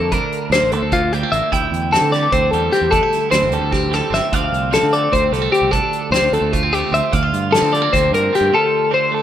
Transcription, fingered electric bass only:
0.00 F2
0.50 D2
0.62 A1
0.73 D2
0.83 D2
1.32 A1
1.52 D2
1.71 E2
2.01 D3
2.33 D2
2.53 E2
2.81 E2
3.32 D2
3.41 G1
3.52 D2
3.59 D2
4.10 G1
4.32 D2
4.51 C2
4.83 D3
5.12 D2
5.31 C2
5.62 C2
6.11 D2
6.22 D2
6.32 D2
6.41 D2
6.91 D2
7.13 D2
7.33 G2
7.62 D3
7.93 D2
8.11 G2
8.41 G2

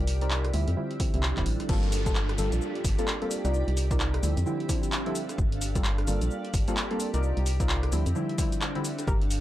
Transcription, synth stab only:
Already playing: C4 D#4 F4 A#4 D5
0.22 C4 D#4 F4 A#4 D5
0.54 D3 F3 G3 C4 E4
0.77 D3 F3 G3 C4 E4
1.00 D3 F3 G3 C4 E4
1.14 D3 F3 G3 C4 E4
1.37 D3 F3 G3 C4 E4
1.69 G3 A#3 C4 F4 A4
2.06 G3 A#3 C4 F4 A4
2.38 G3 A#3 C4 F4 A4
2.99 G3 A#3 C4 F4 A4
3.22 G3 A#3 C4 F4 A4
3.45 C4 D#4 F4 A#4 D5
3.91 C4 D#4 F4 A#4 D5
4.23 D3 F3 G3 C4 E4
4.46 D3 F3 G3 C4 E4
4.69 D3 F3 G3 C4 E4
5.06 D3 F3 G3 C4 E4
5.76 G3 A#3 C4 F4 A4
6.08 G3 A#3 C4 F4 A4
6.68 G3 A#3 C4 F4 A4
6.91 G3 A#3 C4 F4 A4
7.14 C4 D#4 F4 A#4 D5
7.60 C4 D#4 F4 A#4 D5
7.92 D3 F3 G3 C4 E4
8.15 D3 F3 G3 C4 E4
8.38 D3 F3 G3 C4 E4
8.75 D3 F3 G3 C4 E4

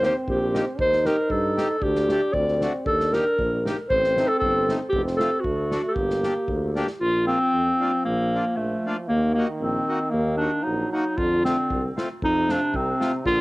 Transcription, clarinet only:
0.05 C5
0.30 G4
0.81 C5
1.06 A#4
1.31 A4
1.82 G4
2.33 D5
2.86 A4
3.14 A#4
3.90 C5
4.27 A4
4.39 A4
4.89 G4
5.17 A4
5.40 F#4
5.88 G4 A4
7.00 F4
7.27 C4
8.05 A#3
8.56 A3
9.08 A#3
9.34 A#3
9.59 C4
10.10 A#3
10.37 D4
10.63 D#4
10.92 D#4
11.17 F4
11.45 C4
12.25 D#4
12.51 D4
12.76 C4
13.26 F4

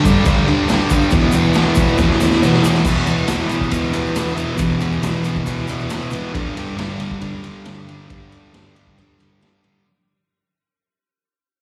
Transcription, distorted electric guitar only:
0.04 G2 D3 G3
0.25 G2 D3 G3
0.46 G2 D3 G3
0.68 G2 D3 G3
0.91 D3 G3
1.13 E2 B2 E3
1.33 B2 E3
1.55 E2 B2 E3
1.77 E2 B2 E3
1.98 E2 B2 E3
2.20 E2 B2 E3
2.41 E2 B2 E3
2.62 B2 E3
2.85 E2 B2 E3
3.06 B2 E3
3.28 E2 B2 E3
3.48 B2 E3
3.71 E2 B2 E3
3.92 B2 E3
4.35 B2 E3
4.56 E2 B2 E3
4.79 B2 E3
5.01 E2 B2 E3
5.24 B2 E3
5.45 E2 B2 E3
5.67 B2 E3
6.12 B2 E3
6.32 G2 D3 G3
6.56 D3 G3
6.77 G2 D3 G3
6.98 D3 G3
7.20 G2 D3 G3
7.43 D3 G3
7.87 D3 G3
8.08 G2 D3 G3
8.30 D3 G3
8.53 G2 D3 G3
8.75 D3 G3
8.97 G2 D3 G3
9.19 D3 G3
9.63 D3 G3

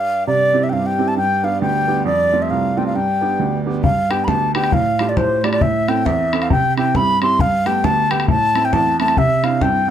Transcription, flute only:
Already playing: F5
0.27 D5
0.63 E5
0.69 F5 G5
0.86 G5
1.08 A5
1.18 G5
1.44 F5
1.62 G5
2.06 D5
2.42 E5
2.50 F5
2.78 G5
2.87 F5
2.96 G5
3.84 F5
4.11 G5
4.24 B5
4.29 A5
4.55 G5
4.73 F5
5.09 D5
5.17 C5
5.41 C5 D5
5.53 D5
5.62 E5
5.89 G5
6.06 E5
6.43 F5
6.52 G5
6.78 G5
6.96 B5
7.23 C6
7.41 F5
7.67 G5
7.85 A5
8.11 G5
8.30 A5
8.65 G5
8.73 A5
9.00 A5
9.18 E5
9.44 F5
9.62 G5

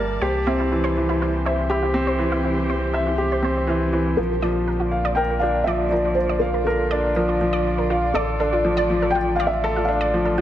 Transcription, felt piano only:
4.17 A#4
5.15 G5
5.39 F5
5.64 E5
5.88 D5
6.15 C5
6.39 A#4
6.64 A4
8.14 A4
9.10 G5
9.36 F5
9.47 E5
9.85 F5

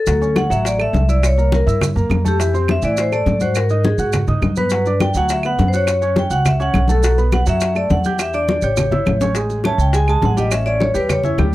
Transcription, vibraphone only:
Already playing: A4
0.37 F#5
0.51 E5
0.67 D5
0.81 E5
1.09 D5
1.26 C#5
1.54 A#4
2.28 G4
2.71 E5
2.85 D5
3.00 C5
3.13 D5
3.42 C5
3.56 A#4
3.85 G#4
4.58 B4
5.01 G5
5.17 F#5
5.32 E5
5.46 F#5
5.68 C5
5.76 C#5
6.19 G5
6.33 F#5
6.47 E5
6.62 F#5
6.91 A4
7.34 F#5
7.49 E5
7.77 D5
7.91 F#5
8.21 E5
8.34 D5
8.63 C#5
9.66 A5
9.81 G5
9.95 G#5
10.09 A5
10.25 F#5
10.39 D#5
10.53 E5
10.66 D5
10.81 C#5
10.96 B4
11.10 C#5
11.25 E4
11.39 G4

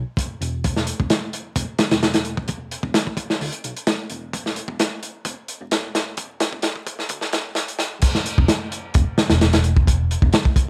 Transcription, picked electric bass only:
0.41 E1
1.00 E1
1.56 E1
1.91 E1
2.83 E1
3.41 D2
3.64 B1
4.10 E1
4.68 E1
5.25 E1
5.61 E1
6.53 E1
7.10 D2
7.33 E1
7.80 B1
8.38 E1
8.95 E1
9.31 E1
10.22 E1

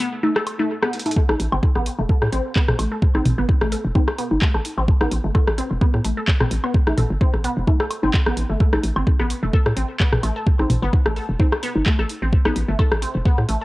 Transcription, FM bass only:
1.29 A1
1.39 A1
1.52 G1
1.75 A1
1.99 E1
2.22 A2
2.32 A1
2.68 A1
2.79 A1
3.15 A1
3.25 A1
3.38 G1
3.61 A1
3.85 E1
4.31 G1
4.54 A1
4.78 A1
5.01 A1
5.12 A1
5.24 G1
5.47 A1
5.71 E1
5.94 A2
6.05 A1
6.41 A1
6.51 A1
6.87 A1
6.98 A1
7.10 G1
7.34 A1
7.57 E1
8.03 G1
8.27 A1
8.37 A1
8.50 G1
8.73 A1
8.84 A1
8.96 G1
9.20 A1
9.43 E1
9.66 A2
9.77 A1
10.12 A1
10.23 A1
10.59 A1
10.70 A1
10.82 G1
11.06 A1
11.29 E1
11.75 G1
11.99 A1
12.22 A1
12.45 A1
12.56 A1
12.68 G1
12.92 A1
13.15 E1
13.38 A2
13.49 A1

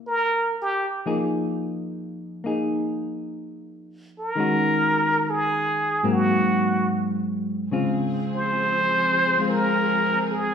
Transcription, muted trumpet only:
0.07 A#4
0.62 G4
4.19 A#4
5.30 G#4
6.13 F#4
8.36 C5
9.50 A#4
10.31 G#4

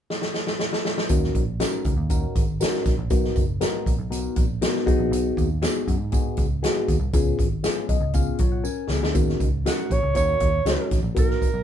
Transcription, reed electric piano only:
1.09 C#4 D#4 F#4 A#4
1.60 C#4 D#4 F#4 A#4
2.10 C#4 D#4 F#4 A#4
2.60 C#4 D#4 F#4 A#4
3.10 B3 D#4 F#4 A#4
3.60 B3 D#4 F#4 A#4
4.10 B3 D#4 F#4 A#4
4.61 B3 D#4 F#4 A#4
4.86 B3 D#4 F#4 G#4
5.62 B3 D#4 F#4 G#4
6.12 B3 D#4 F#4 G#4
6.63 B3 D#4 F#4 G#4
7.13 B3 C#4 F4 G#4
7.63 B3 C#4 F4 G#4
7.89 D#5
8.14 B3 C#4 F4 G#4 F5
8.39 F4 C#5
8.52 F#5
8.64 C#4 A#4 G#5
8.89 B3 G#4
9.14 C#4 D#4 F#4 A#4
9.65 C#4 D#4 F#4 A#4
10.15 C#4 D#4 F#4 A#4
10.65 C#4 D#4 F#4 C#5
11.15 B3 D#4 F#4 A#4

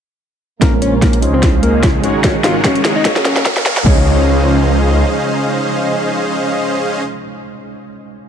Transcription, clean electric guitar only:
0.62 A#3 A#4
0.82 C#4 C#5
1.02 A#3 A#4
1.33 C4 C5
1.63 A#3 A#4
2.24 C#4 C#5
2.44 F4 F5
2.64 C#4 C#5
2.96 D#4 D#5
3.25 C#4 C#5
3.86 C#5

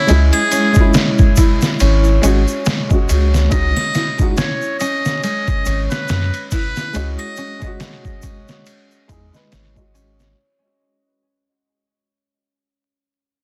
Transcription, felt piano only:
0.07 G#3 C#4 E4
0.72 G#3 C#4
0.80 E4
2.22 G#3 C#4 F#4
2.89 G#3 C#4 F#4
3.08 G#3 C#4
3.12 F#4
3.50 G#3 D#4 F#4
4.18 G#3 D#4 F#4
6.93 G#3 F#4 D#5
7.59 G#3 D#5
7.67 F#4
9.08 G#3 D#4 G#4
9.32 G#3 B4 D#5
9.75 G#3 F#4 D#5

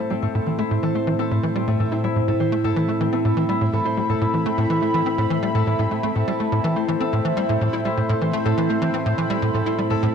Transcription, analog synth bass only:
0.11 G3
0.22 A2
0.35 A2
0.47 E3
0.59 A3
0.71 A2
0.83 E3
0.95 A3
1.07 E3
1.19 C4
1.31 A2
1.43 E3
1.56 G3
1.68 A2
1.80 A2
1.92 E4
2.04 G3
2.16 A2
2.28 A2
2.40 E3
2.52 A3
2.64 A2
2.76 E3
2.88 A3
3.01 E3
3.13 C4
3.25 A2
3.37 E3
3.49 G3
3.61 A2
3.73 A2
3.85 E4
3.97 G3
4.09 A2
4.21 A2
4.34 E3
4.46 A3
4.58 A2
4.70 E3
4.82 A3
4.94 E3
5.06 C4
5.18 A2
5.30 E3
5.43 G3
5.55 A2
5.67 A2
5.79 A2
5.91 A3
6.03 A3
6.15 A2
6.28 G3
6.40 A3
6.52 A2
6.64 E3
6.76 A3
6.88 E3
7.00 C4
7.13 A2
7.25 E3
7.37 G3
7.49 A2
7.61 A2
7.73 E4
7.85 G3
7.97 A2
8.09 A2
8.21 E3
8.33 A3
8.45 A2
8.57 E3
8.70 A3
8.82 E3
8.94 C4
9.06 A2
9.18 E3
9.30 G3
9.42 A2
9.54 A2
9.66 E4
9.78 G3
9.90 A2
10.03 A2

